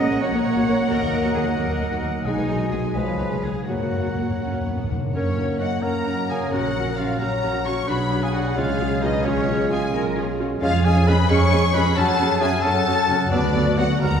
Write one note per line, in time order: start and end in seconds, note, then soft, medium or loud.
0.00 0.92 A#2 medium
0.00 0.23 G#3 medium
0.00 0.20 C#4 medium
0.00 0.44 C#4 soft
0.00 1.34 F#4 soft
0.00 0.92 C#5 medium
0.00 0.22 D#5 medium
0.00 2.22 F#5 medium
0.00 2.27 F#5 medium
0.00 1.95 A#5 medium
0.10 0.15 A#1 soft
0.10 0.16 A#3 soft
0.10 0.15 C#5 medium
0.21 0.26 A#1 medium
0.21 2.10 F#3 medium
0.21 0.89 A#3 medium
0.21 0.26 A#3 medium
0.21 0.27 F#4 medium
0.21 1.57 A#4 soft
0.21 0.43 C#5 medium
0.33 0.37 A#1 soft
0.33 0.39 A#3 medium
0.33 0.39 A#4 medium
0.44 0.49 A#1 soft
0.44 0.50 A#3 medium
0.44 0.91 C#4 soft
0.44 0.88 C#5 medium
0.44 0.49 C#5 medium
0.56 0.60 A#1 medium
0.56 0.62 A#3 medium
0.56 0.60 F#4 medium
0.67 0.72 A#1 soft
0.67 2.02 A#3 soft
0.67 0.72 A#3 soft
0.67 0.72 A#4 medium
0.89 0.94 D#2 medium
0.89 2.27 D#3 medium
0.89 1.56 A#3 medium
0.89 0.95 A#3 medium
0.89 0.94 F#4 medium
0.89 1.34 A#4 medium
0.89 3.39 D#5 medium
1.01 1.06 D#2 medium
1.01 1.07 A#3 soft
1.01 1.05 A#4 medium
1.12 1.17 D#2 medium
1.12 1.19 A#3 soft
1.12 1.79 D#4 soft
1.12 1.17 D#5 soft
1.23 1.28 D#2 medium
1.23 1.29 A#3 medium
1.23 1.28 F#4 medium
1.34 1.40 D#2 medium
1.34 1.40 A#3 soft
1.34 2.28 F#4 soft
1.34 1.43 G#4 medium
1.34 1.39 A#4 soft
1.46 1.51 D#2 soft
1.46 1.52 A#3 soft
1.46 1.50 D#5 soft
1.57 1.62 D#2 medium
1.57 2.93 F#3 medium
1.57 1.63 A#3 medium
1.57 1.61 F#4 medium
1.57 2.02 A#4 medium
1.57 2.28 A#4 medium
1.69 1.73 D#2 soft
1.69 1.74 A#3 medium
1.69 1.73 A#4 medium
1.79 1.84 D#2 soft
1.79 1.85 A#3 soft
1.79 2.48 D#4 soft
1.79 1.84 D#5 soft
1.91 1.96 D#2 medium
1.91 1.96 A#3 medium
1.91 1.96 F#4 medium
2.03 2.07 D#2 soft
2.03 2.28 A#3 soft
2.03 2.08 A#3 medium
2.03 2.07 A#4 soft
2.25 2.30 B1 medium
2.25 2.98 B2 medium
2.25 2.31 G#3 medium
2.25 2.97 G#3 medium
2.25 2.69 D#4 medium
2.25 2.30 G#4 medium
2.25 3.39 D#5 medium
2.25 3.37 G#5 medium
2.25 2.94 G#5 medium
2.37 2.41 B1 soft
2.37 2.43 G#3 soft
2.37 2.42 B4 soft
2.49 2.53 B1 soft
2.49 2.55 G#3 soft
2.49 2.72 D#4 soft
2.49 2.54 D#5 soft
2.60 2.65 B1 medium
2.60 2.67 G#3 medium
2.60 2.66 G#4 medium
2.72 2.77 B1 soft
2.72 2.78 G#3 soft
2.72 3.18 D#4 soft
2.72 2.80 G#4 medium
2.72 3.42 G#4 soft
2.72 2.76 B4 soft
2.83 2.88 B1 soft
2.83 2.89 G#3 soft
2.83 2.89 D#5 soft
2.95 3.00 C#2 medium
2.95 3.70 C#3 soft
2.95 3.42 F3 soft
2.95 3.52 G#3 medium
2.95 3.01 G#3 medium
2.95 3.00 G#4 medium
2.95 3.42 B4 medium
2.95 3.68 F5 soft
3.06 3.12 C#2 soft
3.06 3.13 G#3 soft
3.06 3.11 B4 soft
3.19 3.24 C#2 soft
3.19 3.25 G#3 soft
3.19 3.70 D#4 soft
3.19 3.24 C#5 soft
3.30 3.36 C#2 medium
3.30 3.37 G#3 medium
3.30 3.35 G#4 medium
3.43 3.48 C#2 soft
3.43 3.50 G#3 soft
3.43 3.70 F4 soft
3.43 3.68 G#4 medium
3.43 3.70 G#4 soft
3.43 3.48 B4 soft
3.67 3.72 F#2 medium
3.67 5.12 F#2 soft
3.67 3.75 F#2 soft
3.67 4.86 F#3 soft
3.67 4.76 A#3 soft
3.67 3.74 A#3 soft
3.67 3.72 F#4 soft
3.67 4.41 F#4 medium
3.67 4.86 C#5 soft
3.67 4.91 F#5 soft
3.67 4.86 F#5 soft
3.67 4.86 A#5 soft
3.76 3.83 F#2 soft
3.76 3.85 F#2 soft
3.80 3.86 A#3 soft
3.80 3.85 A#4 soft
3.91 3.98 F#2 soft
3.91 3.97 F#2 soft
3.91 3.98 A#3 soft
3.91 4.65 C#4 soft
3.91 3.96 C#5 soft
3.99 4.06 F#2 soft
4.03 4.09 F#2 soft
4.03 4.13 F#2 soft
4.03 4.11 A#3 soft
4.03 4.08 F#4 soft
4.14 4.21 F#2 soft
4.14 5.58 F#4 soft
4.14 4.21 A#4 soft
4.19 4.29 F#2 soft
4.19 4.23 A#3 soft
4.29 4.33 F#2 soft
4.29 4.36 F#2 soft
4.29 4.35 A#3 soft
4.29 4.34 C#5 soft
4.37 4.44 F#2 soft
4.37 4.46 F#2 soft
4.37 4.46 F#4 soft
4.37 5.81 A#4 soft
4.43 4.52 F#2 soft
4.43 4.65 C#4 soft
4.53 4.58 F#2 soft
4.53 4.59 F#2 soft
4.53 4.58 A#4 soft
4.61 4.68 F#2 soft
4.61 4.70 C#5 soft
4.65 4.70 F#2 soft
4.65 4.75 F#2 soft
4.65 4.90 B3 soft
4.65 5.35 C#4 soft
4.76 4.82 F#2 medium
4.76 4.82 F#2 soft
4.76 4.82 F#4 soft
4.83 4.90 F#2 medium
4.89 4.94 F#2 soft
4.89 4.97 F#2 medium
4.89 5.15 C#3 soft
4.89 5.14 A#3 soft
4.89 4.94 A#4 soft
4.99 5.06 F#2 medium
5.12 5.74 F#2 medium
5.12 6.54 F#2 medium
5.12 5.79 F#3 medium
5.12 5.78 A#3 soft
5.12 6.49 A#3 soft
5.12 5.56 C#4 medium
5.12 7.85 C#4 medium
5.12 5.23 C#4 soft
5.12 5.57 A#4 medium
5.12 5.23 A#4 soft
5.12 5.56 C#5 medium
5.36 6.04 C#4 soft
5.36 5.45 C#4 soft
5.36 5.45 A#4 soft
5.59 5.68 C#4 soft
5.59 6.96 F#4 soft
5.59 5.84 F#4 medium
5.59 5.68 A#4 soft
5.59 5.81 D#5 medium
5.59 5.83 F#5 medium
5.82 6.44 F#2 medium
5.82 6.50 F#3 soft
5.82 6.53 A#3 medium
5.82 5.91 C#4 soft
5.82 7.90 A#4 soft
5.82 6.29 A#4 medium
5.82 7.16 A#4 medium
5.82 5.91 A#4 soft
5.82 6.28 F#5 medium
5.82 6.28 A#5 medium
6.05 6.73 C#4 soft
6.05 6.15 C#4 soft
6.05 6.15 A#4 soft
6.28 6.54 C#3 soft
6.28 6.38 C#4 soft
6.28 6.52 G#4 medium
6.28 6.38 A#4 soft
6.28 6.52 F5 medium
6.28 6.38 G#5 medium
6.28 6.52 G#5 medium
6.51 7.12 A#1 medium
6.51 7.90 A#2 medium
6.51 8.52 F#3 soft
6.51 7.18 F#3 medium
6.51 7.19 C#4 soft
6.51 6.61 C#4 medium
6.51 6.60 F#4 soft
6.51 7.00 F#4 medium
6.51 6.97 C#5 medium
6.51 6.97 F#5 medium
6.74 7.41 C#4 soft
6.74 6.83 C#4 soft
6.74 6.84 F#4 soft
6.97 7.06 C#4 soft
6.97 7.20 F4 medium
6.97 8.33 F#4 soft
6.97 7.07 F#4 soft
6.97 7.20 C#5 medium
6.97 7.21 F5 medium
7.19 7.80 A#1 medium
7.19 7.87 F#3 medium
7.19 7.90 C#4 medium
7.19 7.28 C#4 soft
7.19 7.87 F#4 medium
7.19 7.28 F#4 soft
7.19 7.64 A#4 medium
7.19 7.90 C#5 soft
7.19 7.65 F#5 medium
7.19 7.64 A#5 medium
7.19 7.66 A#5 medium
7.42 7.90 C#4 soft
7.42 7.50 C#4 soft
7.42 7.50 F#4 soft
7.65 7.90 A#3 soft
7.65 7.73 C#4 soft
7.65 7.74 F#4 soft
7.65 7.89 C#5 medium
7.65 7.88 A#5 medium
7.65 7.88 C#6 medium
7.65 7.89 C#6 medium
7.87 8.49 B1 medium
7.87 8.58 B2 medium
7.87 8.58 F#3 medium
7.87 7.96 D4 medium
7.87 8.55 D4 medium
7.87 8.58 D4 medium
7.87 7.96 F#4 medium
7.87 9.90 G#4 medium
7.87 8.24 B4 medium
7.87 8.22 F#5 medium
7.87 8.23 B5 medium
8.11 8.19 D4 soft
8.11 8.59 D4 soft
8.11 8.19 F#4 soft
8.23 8.33 G#4 medium
8.23 8.28 F5 medium
8.23 8.34 G#5 medium
8.33 8.41 D4 soft
8.33 8.56 F#4 medium
8.33 8.41 F#4 soft
8.33 8.59 F#4 soft
8.33 8.59 B4 soft
8.33 8.59 D5 medium
8.33 8.57 F#5 medium
8.56 9.17 C#2 medium
8.56 9.27 C#3 medium
8.56 9.25 G#3 medium
8.56 10.62 G#3 medium
8.56 9.25 C#4 medium
8.56 8.64 C#4 medium
8.56 9.25 C#4 medium
8.56 8.64 F4 soft
8.56 9.04 F4 medium
8.56 9.03 C#5 medium
8.56 9.03 F5 medium
8.56 9.02 F5 medium
8.79 9.47 C#4 soft
8.79 8.88 C#4 medium
8.79 8.88 F4 medium
9.02 9.10 C#4 soft
9.02 9.27 D#4 medium
9.02 9.70 F4 medium
9.02 9.10 F4 medium
9.02 9.92 G#4 medium
9.02 9.27 B4 medium
9.02 9.25 D#5 medium
9.02 9.26 D#5 medium
9.25 9.86 B1 medium
9.25 10.64 B2 medium
9.25 10.60 G#3 medium
9.25 9.33 C#4 medium
9.25 9.71 C#4 medium
9.25 10.59 C#4 medium
9.25 9.33 F4 medium
9.25 10.59 F4 medium
9.25 9.72 G#4 medium
9.25 9.71 C#5 medium
9.48 9.56 C#4 soft
9.48 10.14 C#4 medium
9.48 9.56 F4 medium
9.71 9.79 C#4 medium
9.71 11.98 F4 medium
9.71 9.79 F4 medium
9.71 9.94 G#4 medium
9.71 9.94 F5 medium
9.71 9.94 G#5 medium
9.93 10.54 B1 medium
9.93 10.01 C#4 medium
9.93 10.01 F4 medium
9.93 11.05 G#4 medium
9.93 10.16 A#4 medium
10.15 10.23 C#4 medium
10.15 10.83 C#4 soft
10.15 10.23 F4 medium
10.15 10.39 G#4 medium
10.38 10.63 B3 medium
10.38 10.47 C#4 medium
10.38 10.47 F4 medium
10.38 10.48 F#4 medium
10.61 11.98 F2 medium
10.61 11.22 F2 medium
10.61 10.73 G#3 medium
10.61 10.71 C#4 medium
10.61 10.69 C#4 medium
10.61 10.87 F4 medium
10.61 10.70 G#4 medium
10.61 11.29 G#4 medium
10.61 10.68 C#5 medium
10.61 10.82 F5 medium
10.61 10.84 F5 loud
10.84 10.95 G#3 medium
10.84 11.50 C#4 medium
10.84 10.93 C#4 medium
10.84 10.95 C#4 medium
10.84 10.92 G#4 medium
10.84 11.09 G#4 medium
10.84 11.09 F5 medium
10.84 11.07 G#5 medium
11.06 11.15 G#3 medium
11.06 11.18 G#3 medium
11.06 11.17 C#4 medium
11.06 11.15 C#4 medium
11.06 11.98 G#4 medium
11.06 11.15 G#4 medium
11.06 11.30 B4 medium
11.06 11.30 G#5 medium
11.06 11.29 B5 medium
11.06 11.31 B5 loud
11.29 11.89 F2 medium
11.29 11.40 G#3 medium
11.29 11.38 C#4 medium
11.29 11.41 C#4 medium
11.29 12.62 G#4 medium
11.29 11.38 G#4 medium
11.29 11.75 C#5 loud
11.29 12.61 C#5 medium
11.29 11.74 G#5 medium
11.29 11.74 C#6 loud
11.29 11.75 C#6 loud
11.51 11.62 G#3 medium
11.51 12.17 C#4 medium
11.51 11.60 C#4 medium
11.51 11.62 C#4 medium
11.51 11.60 G#4 medium
11.72 11.98 F3 medium
11.72 11.82 G#3 medium
11.72 11.84 G#3 medium
11.72 11.82 C#4 medium
11.72 11.83 C#4 medium
11.72 11.85 C#4 medium
11.72 11.83 G#4 medium
11.72 11.98 B4 medium
11.72 11.96 G#5 medium
11.72 11.97 B5 medium
11.72 11.97 B5 loud
11.95 13.34 F#2 medium
11.95 12.56 F#2 medium
11.95 12.06 F#3 medium
11.95 12.06 C#4 medium
11.95 12.05 C#4 medium
11.95 12.05 F#4 medium
11.95 12.43 A4 medium
11.95 12.43 F#5 loud
11.95 12.41 A5 medium
11.95 12.42 A5 loud
12.18 12.29 F#3 medium
12.18 12.84 C#4 medium
12.18 12.29 C#4 medium
12.18 12.29 F#4 medium
12.40 12.49 F#3 medium
12.40 12.51 F#3 medium
12.40 12.49 C#4 medium
12.40 12.52 C#4 medium
12.40 12.50 C#4 medium
12.40 13.77 F#4 medium
12.40 12.50 F#4 medium
12.40 12.64 G#4 medium
12.40 12.64 E5 medium
12.40 12.64 G#5 medium
12.40 12.64 G#5 loud
12.62 13.24 F#2 medium
12.62 12.75 F#3 medium
12.62 12.74 C#4 medium
12.62 12.73 C#4 medium
12.62 12.73 F#4 medium
12.62 13.31 A4 loud
12.62 13.33 A4 medium
12.62 13.34 C#5 medium
12.62 13.31 F#5 medium
12.62 13.30 A5 medium
12.62 13.31 A5 loud
12.85 12.97 F#3 medium
12.85 13.34 C#4 medium
12.85 12.97 C#4 medium
12.85 12.95 C#4 medium
12.85 12.96 F#4 medium
13.08 13.34 C#3 medium
13.08 13.17 F#3 medium
13.08 13.19 F#3 medium
13.08 13.17 C#4 medium
13.08 13.19 C#4 medium
13.08 13.17 C#4 medium
13.08 13.18 F#4 medium
13.31 13.94 D2 medium
13.31 14.03 D3 medium
13.31 13.42 F#3 medium
13.31 13.42 B3 medium
13.31 13.40 B3 medium
13.31 13.79 D4 medium
13.31 13.40 F#4 medium
13.31 14.20 F#4 medium
13.31 13.78 B4 medium
13.31 13.78 D5 loud
13.31 13.78 D5 medium
13.55 13.66 F#3 medium
13.55 13.66 B3 medium
13.55 13.63 B3 medium
13.55 14.04 D4 medium
13.55 13.63 F#4 medium
13.77 13.89 F#3 medium
13.77 13.87 F#3 medium
13.77 13.86 B3 medium
13.77 13.89 B3 medium
13.77 13.86 B3 medium
13.77 14.01 F#4 medium
13.77 13.86 F#4 medium
13.77 14.20 F#4 soft
13.77 14.04 B4 medium
13.77 14.04 D5 medium
13.77 14.01 F#5 medium
13.77 14.02 F#5 medium
14.01 14.20 D#2 medium
14.01 14.20 D#3 medium
14.01 14.13 F#3 medium
14.01 14.12 G#3 medium
14.01 14.11 G#3 medium
14.01 14.11 F#4 medium
14.01 14.20 A#4 medium
14.01 14.20 F#5 medium
14.01 14.20 A#5 medium